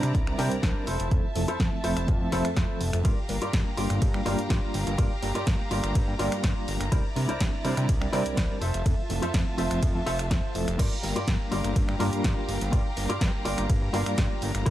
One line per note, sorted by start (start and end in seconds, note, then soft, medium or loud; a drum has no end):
0.00 0.13 C3 medium
0.00 0.24 G3 medium
0.00 0.24 C4 medium
0.00 0.15 D4 medium
0.00 0.25 D4 medium
0.00 0.15 E4 medium
0.00 0.25 E4 medium
0.00 0.86 E4 medium
0.00 0.15 A#4 medium
0.00 0.25 A#4 medium
0.00 0.15 C5 loud
0.00 0.86 D5 medium
0.00 0.86 A#5 medium
0.00 finger snap medium
0.00 closed hi-hat medium
0.15 0.34 C2 loud
0.15 kick loud
0.15 closed hi-hat medium
0.27 0.36 G3 medium
0.27 0.36 C4 medium
0.27 0.36 D4 medium
0.27 0.36 E4 medium
0.27 0.36 A#4 loud
0.27 finger snap medium
0.38 0.49 C3 medium
0.38 0.86 G3 medium
0.38 0.86 C4 medium
0.38 0.51 D4 loud
0.38 0.86 D4 medium
0.38 0.86 E4 medium
0.38 0.52 E4 loud
0.38 0.52 A#4 loud
0.38 0.86 A#4 loud
0.38 0.52 C5 loud
0.38 open hi-hat loud
0.51 0.61 C2 soft
0.51 closed hi-hat medium
0.63 0.73 C2 loud
0.63 0.86 D4 medium
0.63 0.86 E4 medium
0.63 0.87 A#4 medium
0.63 0.86 C5 loud
0.63 kick loud
0.63 snare loud
0.63 closed hi-hat medium
0.87 0.98 F1 medium
0.87 1.26 E4 loud
0.87 1.26 F4 medium
0.87 1.26 A4 medium
0.87 1.27 C5 loud
0.87 3.03 E5 medium
0.87 3.03 A5 medium
0.87 open hi-hat loud
1.00 1.09 F1 loud
1.00 closed hi-hat medium
1.11 1.22 F2 loud
1.11 1.25 F3 medium
1.11 1.25 A3 medium
1.11 1.25 C4 medium
1.11 1.25 E4 medium
1.11 1.25 A4 medium
1.11 kick loud
1.11 closed hi-hat medium
1.35 1.46 F1 medium
1.35 1.49 F3 medium
1.35 1.49 A3 medium
1.35 1.49 C4 medium
1.35 1.49 E4 medium
1.35 1.49 A4 loud
1.35 muted clean electric guitar stroke soft
1.35 open hi-hat loud
1.48 1.58 F2 soft
1.48 1.66 E4 medium
1.48 1.66 F4 medium
1.48 1.66 A4 medium
1.48 1.66 C5 loud
1.48 closed hi-hat medium
1.59 1.70 F2 medium
1.59 1.81 F3 medium
1.59 1.81 A3 medium
1.59 1.81 C4 medium
1.59 1.81 E4 medium
1.59 1.81 A4 medium
1.59 kick loud
1.59 snare loud
1.59 closed hi-hat medium
1.83 1.94 F1 medium
1.83 2.18 F3 medium
1.83 2.18 A3 medium
1.83 2.18 C4 medium
1.83 2.08 E4 medium
1.83 2.08 F4 medium
1.83 2.18 A4 medium
1.83 2.08 A4 medium
1.83 2.08 C5 loud
1.83 2.18 E5 medium
1.83 open hi-hat loud
1.97 2.06 F1 medium
1.97 finger snap medium
1.97 closed hi-hat medium
2.08 2.28 F2 loud
2.08 kick loud
2.08 closed hi-hat medium
2.21 2.30 F3 medium
2.21 2.30 A3 medium
2.21 2.30 C4 medium
2.21 2.30 E4 medium
2.21 2.30 A4 medium
2.32 2.43 F1 medium
2.32 3.02 F3 medium
2.32 3.02 A3 medium
2.32 3.02 C4 medium
2.32 2.45 E4 loud
2.32 2.45 F4 loud
2.32 2.45 A4 loud
2.32 3.03 A4 loud
2.32 2.45 C5 loud
2.32 3.02 E5 medium
2.32 open hi-hat loud
2.45 2.54 F2 soft
2.45 finger snap medium
2.45 closed hi-hat medium
2.56 2.67 F2 loud
2.56 2.81 E4 medium
2.56 2.81 F4 medium
2.56 2.81 A4 medium
2.56 2.81 C5 loud
2.56 kick loud
2.56 snare loud
2.56 closed hi-hat soft
2.81 2.91 F1 loud
2.81 open hi-hat loud
2.93 3.03 F1 medium
2.93 finger snap medium
2.93 closed hi-hat medium
3.05 3.15 G2 loud
3.05 3.18 G3 medium
3.05 3.19 A#3 medium
3.05 3.19 D4 medium
3.05 3.18 F4 loud
3.05 3.19 F4 medium
3.05 6.88 G4 medium
3.05 3.18 G4 loud
3.05 3.18 A#4 loud
3.05 3.19 A#4 medium
3.05 3.18 D5 loud
3.05 6.88 F5 medium
3.05 8.57 A#5 medium
3.05 kick loud
3.05 closed hi-hat medium
3.05 ride medium
3.29 3.39 G1 medium
3.29 3.43 G3 medium
3.29 3.43 A#3 medium
3.29 3.43 D4 medium
3.29 3.43 F4 medium
3.29 3.43 A#4 loud
3.29 muted clean electric guitar stroke soft
3.29 open hi-hat loud
3.42 3.51 G2 soft
3.42 3.60 F4 medium
3.42 3.60 G4 medium
3.42 3.60 A#4 medium
3.42 3.60 D5 medium
3.42 closed hi-hat medium
3.53 3.64 G2 medium
3.53 3.75 G3 medium
3.53 3.75 A#3 medium
3.53 3.75 D4 medium
3.53 3.75 F4 medium
3.53 3.75 A#4 medium
3.53 kick loud
3.53 snare loud
3.53 closed hi-hat medium
3.53 ride medium
3.77 3.88 G1 medium
3.77 4.11 G3 medium
3.77 4.11 A#3 medium
3.77 4.12 D4 medium
3.77 4.02 F4 medium
3.77 4.12 F4 medium
3.77 4.02 G4 medium
3.77 4.02 A#4 medium
3.77 4.12 A#4 medium
3.77 4.02 D5 loud
3.77 open hi-hat loud
3.90 4.00 G1 medium
3.90 finger snap medium
3.90 closed hi-hat medium
4.02 4.21 G2 loud
4.02 kick loud
4.02 closed hi-hat medium
4.02 ride medium
4.14 4.23 G3 medium
4.14 4.23 A#3 medium
4.14 4.23 D4 medium
4.14 4.24 F4 medium
4.14 4.24 A#4 medium
4.14 finger snap medium
4.25 4.36 G1 medium
4.25 4.95 G3 medium
4.25 4.96 A#3 medium
4.25 4.96 D4 medium
4.25 4.39 F4 loud
4.25 4.96 F4 medium
4.25 4.39 G4 loud
4.25 4.39 A#4 loud
4.25 4.96 A#4 loud
4.25 4.39 D5 loud
4.25 open hi-hat loud
4.39 4.48 G2 soft
4.39 closed hi-hat medium
4.50 4.60 G2 loud
4.50 4.74 F4 medium
4.50 4.74 G4 medium
4.50 4.75 A#4 medium
4.50 4.75 D5 loud
4.50 kick loud
4.50 snare loud
4.50 closed hi-hat soft
4.50 ride medium
4.74 4.84 G1 loud
4.74 open hi-hat loud
4.87 4.96 G1 loud
4.87 closed hi-hat medium
4.98 5.09 G2 loud
4.98 5.12 G3 medium
4.98 5.12 A#3 medium
4.98 5.12 D4 medium
4.98 5.11 F4 loud
4.98 5.12 F4 medium
4.98 5.11 G4 loud
4.98 5.11 A#4 loud
4.98 5.12 A#4 medium
4.98 5.11 D5 loud
4.98 kick loud
4.98 closed hi-hat medium
4.98 ride medium
5.22 5.33 G1 medium
5.22 5.36 G3 medium
5.22 5.36 A#3 medium
5.22 5.36 D4 medium
5.22 5.36 F4 medium
5.22 5.37 A#4 loud
5.22 muted clean electric guitar stroke soft
5.22 open hi-hat loud
5.35 5.45 G2 soft
5.35 5.53 F4 medium
5.35 5.53 G4 medium
5.35 5.53 A#4 medium
5.35 5.53 D5 loud
5.35 closed hi-hat medium
5.47 5.57 G2 medium
5.47 5.68 G3 medium
5.47 5.68 A#3 medium
5.47 5.68 D4 medium
5.47 5.68 F4 medium
5.47 5.69 A#4 medium
5.47 kick loud
5.47 snare loud
5.47 closed hi-hat medium
5.47 ride medium
5.71 5.81 G1 medium
5.71 6.05 G3 medium
5.71 6.05 A#3 medium
5.71 6.05 D4 medium
5.71 5.95 F4 medium
5.71 6.05 F4 medium
5.71 5.95 G4 medium
5.71 5.96 A#4 medium
5.71 6.05 A#4 medium
5.71 5.96 D5 medium
5.71 open hi-hat loud
5.84 5.93 G1 medium
5.84 finger snap medium
5.84 closed hi-hat medium
5.95 6.15 G2 loud
5.95 kick loud
5.95 closed hi-hat medium
5.95 ride medium
6.08 6.17 G3 medium
6.08 6.17 A#3 medium
6.08 6.17 D4 medium
6.08 6.17 F4 medium
6.08 6.17 A#4 medium
6.19 6.30 G1 medium
6.19 6.89 G3 medium
6.19 6.89 A#3 medium
6.19 6.89 D4 medium
6.19 6.32 F4 loud
6.19 6.90 F4 medium
6.19 6.32 G4 loud
6.19 6.32 A#4 loud
6.19 6.90 A#4 loud
6.19 6.32 D5 loud
6.19 open hi-hat loud
6.32 6.41 G2 soft
6.32 finger snap medium
6.32 closed hi-hat medium
6.43 6.54 G2 loud
6.43 6.68 F4 medium
6.43 6.68 G4 medium
6.43 6.68 A#4 medium
6.43 6.68 D5 loud
6.43 kick loud
6.43 snare loud
6.43 closed hi-hat medium
6.43 ride medium
6.68 6.78 G1 medium
6.68 open hi-hat loud
6.80 6.90 G1 medium
6.80 finger snap medium
6.80 closed hi-hat medium
6.92 7.02 C2 loud
6.92 7.05 G3 medium
6.92 7.06 C4 medium
6.92 7.06 D4 medium
6.92 7.05 E4 loud
6.92 8.60 E4 medium
6.92 7.06 E4 medium
6.92 7.05 A#4 loud
6.92 7.06 A#4 medium
6.92 7.05 C5 loud
6.92 8.60 D5 medium
6.92 7.05 D5 loud
6.92 kick loud
6.92 closed hi-hat medium
6.92 ride medium
7.16 7.26 C3 medium
7.16 7.30 G3 medium
7.16 7.30 C4 medium
7.16 7.30 D4 medium
7.16 7.30 E4 medium
7.16 7.30 A#4 loud
7.16 muted clean electric guitar stroke soft
7.16 open hi-hat loud
7.29 7.38 C2 soft
7.29 7.47 E4 medium
7.29 7.47 A#4 medium
7.29 7.47 C5 medium
7.29 7.47 D5 loud
7.29 closed hi-hat medium
7.40 7.51 C2 medium
7.40 7.62 G3 medium
7.40 7.62 C4 medium
7.40 7.62 D4 medium
7.40 7.62 E4 medium
7.40 7.62 A#4 medium
7.40 kick loud
7.40 snare loud
7.40 closed hi-hat medium
7.40 ride medium
7.64 7.75 C3 medium
7.64 7.98 G3 medium
7.64 7.99 C4 medium
7.64 7.99 D4 medium
7.64 7.89 E4 medium
7.64 7.99 E4 medium
7.64 7.89 A#4 medium
7.64 7.99 A#4 medium
7.64 7.89 C5 medium
7.64 7.89 D5 loud
7.64 open hi-hat loud
7.77 7.87 C3 medium
7.77 finger snap medium
7.77 closed hi-hat medium
7.89 8.09 C2 loud
7.89 kick loud
7.89 closed hi-hat medium
7.89 ride medium
8.01 8.10 G3 medium
8.01 8.10 C4 medium
8.01 8.10 D4 medium
8.01 8.10 E4 medium
8.01 8.11 A#4 loud
8.01 finger snap medium
8.13 8.23 C3 medium
8.13 8.60 G3 loud
8.13 8.60 C4 medium
8.13 8.60 D4 medium
8.13 8.26 E4 loud
8.13 8.60 E4 medium
8.13 8.26 A#4 loud
8.13 8.60 A#4 loud
8.13 8.26 C5 loud
8.13 8.26 D5 loud
8.13 open hi-hat loud
8.26 8.35 C2 soft
8.26 closed hi-hat medium
8.37 8.48 C2 loud
8.37 8.61 E4 medium
8.37 8.61 A#4 medium
8.37 8.61 C5 medium
8.37 8.62 D5 loud
8.37 kick loud
8.37 snare loud
8.37 closed hi-hat medium
8.37 ride medium
8.61 8.72 F1 medium
8.61 9.01 F4 loud
8.61 10.77 F4 medium
8.61 9.01 A4 medium
8.61 9.01 C5 medium
8.61 10.77 E5 medium
8.61 9.01 E5 loud
8.61 10.77 A5 medium
8.61 open hi-hat loud
8.74 8.83 F1 loud
8.74 closed hi-hat medium
8.85 8.96 F2 loud
8.85 8.99 F3 medium
8.85 8.99 A3 medium
8.85 8.99 C4 medium
8.85 8.99 E4 medium
8.85 8.99 A4 medium
8.85 kick loud
8.85 closed hi-hat medium
8.85 ride medium
9.09 9.20 F1 medium
9.09 9.23 F3 medium
9.09 9.23 A3 medium
9.09 9.23 C4 medium
9.09 9.24 E4 medium
9.09 9.24 A4 loud
9.09 muted clean electric guitar stroke soft
9.09 open hi-hat loud
9.22 9.32 F2 soft
9.22 9.40 F4 medium
9.22 9.40 A4 medium
9.22 9.40 C5 medium
9.22 9.41 E5 medium
9.22 closed hi-hat medium
9.34 9.44 F2 medium
9.34 9.55 F3 medium
9.34 9.55 A3 medium
9.34 9.55 C4 medium
9.34 9.56 E4 medium
9.34 9.56 A4 medium
9.34 kick loud
9.34 snare loud
9.34 closed hi-hat medium
9.34 ride medium
9.58 9.69 F1 medium
9.58 9.92 F3 medium
9.58 9.92 A3 medium
9.58 9.92 C4 medium
9.58 9.82 F4 medium
9.58 9.82 A4 medium
9.58 9.92 A4 medium
9.58 9.82 C5 medium
9.58 9.92 E5 medium
9.58 9.83 E5 medium
9.58 open hi-hat loud
9.71 9.80 F1 medium
9.71 finger snap medium
9.71 closed hi-hat medium
9.83 10.02 F2 loud
9.83 kick loud
9.83 closed hi-hat medium
9.83 ride medium
9.95 10.04 F3 medium
9.95 10.04 A3 medium
9.95 10.04 C4 medium
9.95 10.04 E4 medium
9.95 10.04 A4 loud
10.06 10.32 F1 medium
10.06 10.19 F4 loud
10.06 10.19 A4 loud
10.06 10.19 C5 loud
10.06 10.19 E5 loud
10.06 open hi-hat loud
10.19 finger snap medium
10.19 closed hi-hat medium
10.31 10.41 F2 loud
10.31 10.55 F4 medium
10.31 10.55 A4 medium
10.31 10.55 C5 medium
10.31 10.55 E5 loud
10.31 kick loud
10.31 snare loud
10.31 closed hi-hat medium
10.31 ride medium
10.54 10.65 F1 medium
10.54 10.76 F3 medium
10.54 10.76 A3 medium
10.54 10.76 C4 medium
10.54 10.77 E4 medium
10.54 10.77 A4 loud
10.54 open hi-hat loud
10.68 10.77 F1 loud
10.68 finger snap medium
10.68 closed hi-hat medium
10.79 10.89 G2 loud
10.79 10.92 G3 medium
10.79 10.93 A#3 medium
10.79 10.93 D4 medium
10.79 10.92 F4 loud
10.79 10.93 F4 medium
10.79 10.92 G4 loud
10.79 14.63 G4 medium
10.79 10.92 A#4 loud
10.79 10.93 A#4 medium
10.79 10.92 D5 loud
10.79 14.63 F5 medium
10.79 14.70 A#5 medium
10.79 kick loud
10.79 closed hi-hat medium
10.79 ride medium
10.79 crash medium
11.03 11.14 G1 medium
11.03 11.17 G3 medium
11.03 11.17 A#3 medium
11.03 11.17 D4 medium
11.03 11.17 F4 medium
11.03 11.17 A#4 loud
11.03 muted clean electric guitar stroke soft
11.03 open hi-hat loud
11.16 11.25 G2 soft
11.16 11.34 F4 medium
11.16 11.34 G4 medium
11.16 11.34 A#4 medium
11.16 11.34 D5 loud
11.16 closed hi-hat medium
11.27 11.38 G2 medium
11.27 11.49 G3 medium
11.27 11.49 A#3 medium
11.27 11.49 D4 medium
11.27 11.49 F4 medium
11.27 11.49 A#4 medium
11.27 kick loud
11.27 snare loud
11.27 closed hi-hat medium
11.27 ride medium
11.51 11.62 G1 medium
11.51 11.85 G3 medium
11.51 11.85 A#3 medium
11.51 11.86 D4 medium
11.51 11.76 F4 medium
11.51 11.86 F4 medium
11.51 11.76 G4 medium
11.51 11.76 A#4 medium
11.51 11.86 A#4 medium
11.51 11.76 D5 loud
11.51 open hi-hat loud
11.64 11.74 G1 medium
11.64 finger snap medium
11.64 closed hi-hat medium
11.76 11.96 G2 loud
11.76 kick loud
11.76 closed hi-hat medium
11.76 ride medium
11.88 11.97 G3 medium
11.88 11.97 A#3 medium
11.88 11.97 D4 medium
11.88 11.98 F4 medium
11.88 11.98 A#4 medium
11.88 finger snap medium
11.99 12.10 G1 medium
11.99 12.70 G3 medium
11.99 12.70 A#3 medium
11.99 12.70 D4 medium
11.99 12.13 F4 loud
11.99 12.70 F4 medium
11.99 12.13 G4 loud
11.99 12.13 A#4 loud
11.99 12.70 A#4 loud
11.99 12.13 D5 loud
11.99 open hi-hat loud
12.13 12.22 G2 soft
12.13 closed hi-hat medium
12.24 12.35 G2 medium
12.24 12.48 F4 medium
12.24 12.49 G4 medium
12.24 12.49 A#4 medium
12.24 12.49 D5 loud
12.24 kick loud
12.24 snare loud
12.24 closed hi-hat medium
12.24 ride medium
12.49 12.59 G1 medium
12.49 open hi-hat loud
12.61 12.71 G1 loud
12.61 closed hi-hat medium
12.72 12.83 G2 loud
12.72 12.86 G3 medium
12.72 12.86 A#3 medium
12.72 12.86 D4 medium
12.72 12.85 F4 loud
12.72 12.86 F4 medium
12.72 12.85 G4 loud
12.72 12.85 A#4 loud
12.72 12.86 A#4 medium
12.72 12.86 D5 loud
12.72 kick loud
12.72 closed hi-hat medium
12.72 ride medium
12.97 13.07 G1 medium
12.97 13.10 G3 loud
12.97 13.10 A#3 medium
12.97 13.10 D4 medium
12.97 13.11 F4 medium
12.97 13.11 A#4 loud
12.97 muted clean electric guitar stroke soft
12.97 open hi-hat loud
13.09 13.19 G2 soft
13.09 13.27 F4 medium
13.09 13.27 G4 medium
13.09 13.28 A#4 medium
13.09 13.28 D5 loud
13.09 closed hi-hat medium
13.21 13.31 G2 medium
13.21 13.42 G3 medium
13.21 13.43 A#3 medium
13.21 13.43 D4 medium
13.21 13.43 F4 medium
13.21 13.43 A#4 medium
13.21 kick loud
13.21 snare loud
13.21 closed hi-hat medium
13.21 ride medium
13.45 13.56 G1 medium
13.45 13.79 G3 medium
13.45 13.79 A#3 medium
13.45 13.79 D4 medium
13.45 13.69 F4 medium
13.45 13.79 F4 medium
13.45 13.70 G4 medium
13.45 13.70 A#4 medium
13.45 13.79 A#4 medium
13.45 13.70 D5 loud
13.45 open hi-hat loud
13.58 13.67 G1 medium
13.58 finger snap medium
13.58 closed hi-hat medium
13.70 13.89 G2 loud
13.70 kick loud
13.70 closed hi-hat medium
13.70 ride medium
13.82 13.91 G3 medium
13.82 13.91 A#3 medium
13.82 13.91 D4 medium
13.82 13.91 F4 medium
13.82 13.91 A#4 medium
13.93 14.04 G1 medium
13.93 14.63 G3 loud
13.93 14.63 A#3 medium
13.93 14.64 D4 medium
13.93 14.06 F4 loud
13.93 14.64 F4 medium
13.93 14.06 G4 loud
13.93 14.07 A#4 loud
13.93 14.64 A#4 loud
13.93 14.07 F5 loud
13.93 open hi-hat loud
14.06 14.16 G2 soft
14.06 finger snap medium
14.06 closed hi-hat medium
14.18 14.28 G2 loud
14.18 14.42 F4 medium
14.18 14.42 G4 medium
14.18 14.42 A#4 medium
14.18 14.42 D5 loud
14.18 kick loud
14.18 snare loud
14.18 closed hi-hat medium
14.18 ride medium
14.42 14.52 G1 medium
14.42 open hi-hat loud
14.55 14.64 G1 medium
14.55 finger snap medium
14.55 closed hi-hat medium
14.66 14.70 C2 loud
14.66 14.70 G3 medium
14.66 14.70 C4 medium
14.66 14.70 D4 medium
14.66 14.70 E4 loud
14.66 14.70 E4 medium
14.66 14.70 A#4 loud
14.66 14.70 C5 loud
14.66 14.70 D5 medium
14.66 14.70 D5 loud
14.66 kick loud
14.66 closed hi-hat medium
14.66 ride medium